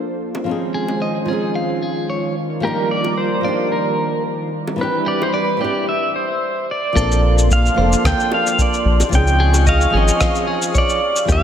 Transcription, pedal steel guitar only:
2.65 A#4
2.91 D5
3.18 C5
3.72 A#4
4.81 B4
5.08 D5
5.23 C5
5.36 B4
5.61 D5
5.89 E5
6.16 C5
6.71 D5
7.53 F5
8.07 G5
8.34 F5
8.62 D5
9.15 G5
9.69 F5
9.97 D#5
10.78 D5
11.32 F5

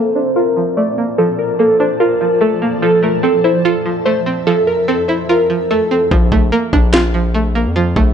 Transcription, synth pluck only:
Already playing: F3 A3 A#3
0.16 D4
0.36 F4
0.57 F3
0.77 A3
0.98 A#3
1.18 F3
1.59 A#3
1.80 D4
2.00 F4
2.21 F3
2.41 A3
2.62 A#3
2.82 F3
3.03 A3
3.23 C4
3.44 E4
3.65 F4
3.86 F3
4.06 A3
4.26 C4
4.47 F3
4.88 C4
5.09 E4
5.29 F4
5.50 F3
5.71 A3
5.91 C4
6.12 F3
6.32 A3
6.52 A#3
6.73 D4
6.94 F4
7.14 F3
7.34 A3
7.55 A#3
7.76 F3
7.96 A3

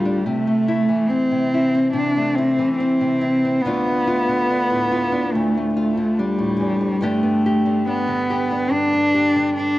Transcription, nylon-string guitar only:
Already playing: D2 A2 D3 A3 F4
0.05 D4
0.26 C3
0.47 A3
0.68 E4
0.89 E3
1.10 C4
1.31 C3
1.54 E4
1.74 C4
1.93 C3
2.16 A3
2.38 E4
2.58 E3
2.80 C4
3.01 C3
3.21 E4
3.45 C4
3.65 D2 D3 A3 D4 F4
3.88 A3
4.07 F4
4.29 D3
4.50 D4
4.70 A2
4.92 F4
5.12 D4
5.35 D2
5.57 A3
5.77 F4
5.97 D3
6.19 D4
6.38 A2
6.60 E2
6.81 F2
7.01 G2 D3 B3 D4 G4
7.23 B3
7.46 G4
7.66 D3
7.87 D4
8.08 D3
8.30 G4
8.51 D4
8.71 G2
8.93 B3
9.14 G4
9.35 D3
9.59 D4

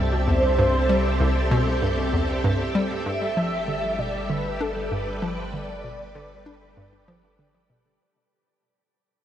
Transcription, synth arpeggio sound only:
Already playing: G2
0.28 E2
0.59 G2
0.89 G3
1.20 C2
1.51 B2
1.82 G2
2.13 E2
2.44 G2
2.75 G3
3.06 G2
3.37 F3
3.68 D3
3.99 B2
4.30 D3
4.61 D4
4.92 G2
5.22 F3
5.53 D3
5.84 B2
6.15 D3
6.46 D4
6.77 G2
7.08 F3
7.39 D3
7.70 B2

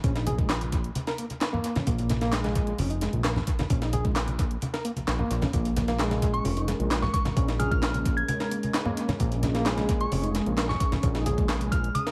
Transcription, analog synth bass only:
0.04 A#1
1.87 A#1
2.78 F1
3.13 A#1
3.70 A#1
4.97 A#1
5.08 A#1
5.31 A#1
5.54 A#1
6.45 F1
6.79 A#1
7.37 A#1
9.20 A#1
10.12 F1
10.46 A#1
11.03 A#1

